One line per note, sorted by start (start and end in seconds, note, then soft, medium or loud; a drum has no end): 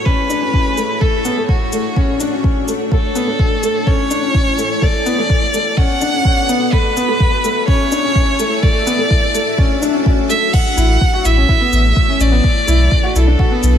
0.00 4.78 A3 medium
0.00 0.99 E4 medium
0.00 0.99 G#4 medium
0.00 4.78 C#5 medium
0.05 0.27 C#4 medium
0.05 1.03 B4 loud
0.05 kick loud
0.30 0.40 D4 medium
0.30 shaker medium
0.42 0.52 C#4 medium
0.54 0.75 C#4 medium
0.54 kick medium
0.77 0.99 A3 medium
0.77 shaker medium
1.01 1.22 A3 medium
1.01 2.90 D4 medium
1.01 2.90 F#4 medium
1.01 1.48 A4 medium
1.01 kick loud
1.25 1.36 B3 medium
1.25 shaker medium
1.37 1.58 A3 medium
1.49 2.40 F#4 medium
1.49 kick loud
1.73 1.94 A3 medium
1.73 shaker medium
1.96 2.18 C#4 medium
1.96 kick loud
2.20 2.31 D4 medium
2.20 shaker medium
2.33 2.43 C#4 medium
2.44 2.65 C#4 medium
2.44 kick loud
2.68 2.89 A3 medium
2.68 shaker medium
2.92 3.13 A3 medium
2.92 4.80 E4 medium
2.92 3.89 A4 medium
2.92 4.80 G#5 medium
2.92 kick loud
3.15 3.26 B3 medium
3.15 shaker medium
3.27 3.48 A3 medium
3.39 kick loud
3.63 3.84 A3 medium
3.63 shaker medium
3.87 4.08 C#4 medium
3.87 4.84 C#5 loud
3.87 kick loud
4.11 4.21 D4 medium
4.11 shaker medium
4.23 4.33 C#4 medium
4.34 4.56 C#4 medium
4.34 kick medium
4.58 4.80 A3 medium
4.58 shaker medium
4.82 5.03 A3 medium
4.82 6.71 B3 medium
4.82 6.71 F#4 medium
4.82 6.71 A4 medium
4.82 6.71 D5 medium
4.82 5.79 D5 loud
4.82 kick medium
5.06 5.17 B3 medium
5.06 shaker medium
5.18 5.39 A3 medium
5.30 kick medium
5.54 5.75 A3 medium
5.54 shaker medium
5.77 5.99 C#4 medium
5.77 6.74 F#5 loud
5.77 kick medium
6.01 6.12 D4 medium
6.01 shaker medium
6.14 6.24 C#4 medium
6.25 6.46 C#4 medium
6.25 kick medium
6.49 6.70 B3 medium
6.49 shaker medium
6.73 10.50 A3 medium
6.73 6.94 A3 medium
6.73 8.61 E4 medium
6.73 8.61 G#4 medium
6.73 7.67 B4 loud
6.73 10.50 E5 medium
6.73 kick loud
6.97 7.07 B3 medium
6.97 shaker medium
7.08 7.30 A3 medium
7.20 kick loud
7.44 7.65 A3 medium
7.44 shaker medium
7.68 7.89 C#4 medium
7.68 8.64 C#5 loud
7.68 kick loud
7.92 8.02 D4 medium
7.92 shaker medium
8.04 8.14 C#4 medium
8.15 8.37 C#4 medium
8.15 kick medium
8.39 8.60 A3 medium
8.39 shaker medium
8.63 8.84 A3 medium
8.63 10.52 D4 medium
8.63 10.52 F#4 medium
8.63 10.06 D5 loud
8.63 kick loud
8.87 8.97 B3 medium
8.87 shaker medium
8.99 9.20 A3 medium
9.11 kick loud
9.34 9.56 A3 medium
9.34 shaker medium
9.58 9.79 C#4 medium
9.58 kick loud
9.82 9.93 D4 medium
9.82 shaker medium
9.94 10.04 C#4 medium
10.06 10.27 C#4 medium
10.06 kick loud
10.30 10.51 A3 medium
10.30 10.55 E5 loud
10.30 shaker medium
10.54 13.78 A3 medium
10.54 12.42 E4 medium
10.54 12.42 G#4 medium
10.54 12.42 C#5 medium
10.54 11.27 F#5 loud
10.54 kick loud
10.54 crash loud
10.77 10.97 A1 loud
10.77 10.98 E4 medium
10.77 shaker medium
11.01 kick loud
11.14 11.24 F#4 medium
11.25 11.45 A1 medium
11.25 11.36 E4 medium
11.25 12.22 E5 loud
11.25 shaker medium
11.37 11.48 C#4 medium
11.49 11.59 E4 medium
11.49 kick loud
11.61 11.82 B3 medium
11.72 11.93 A1 loud
11.72 shaker medium
11.96 kick loud
12.08 12.19 C#4 medium
12.20 12.40 A1 loud
12.20 12.31 C#4 medium
12.20 13.17 D5 loud
12.20 shaker medium
12.32 12.43 B3 medium
12.44 13.78 D4 medium
12.44 13.78 F#4 medium
12.44 13.78 B4 medium
12.44 kick loud
12.68 12.88 B1 medium
12.68 12.89 E4 medium
12.68 shaker medium
12.92 kick loud
13.04 13.14 F#4 medium
13.15 13.35 B1 medium
13.15 13.26 E4 medium
13.15 13.78 A4 medium
13.15 shaker medium
13.27 13.38 D4 medium
13.39 13.50 F#4 medium
13.39 kick loud
13.51 13.72 B3 medium
13.63 13.78 B1 loud
13.63 shaker medium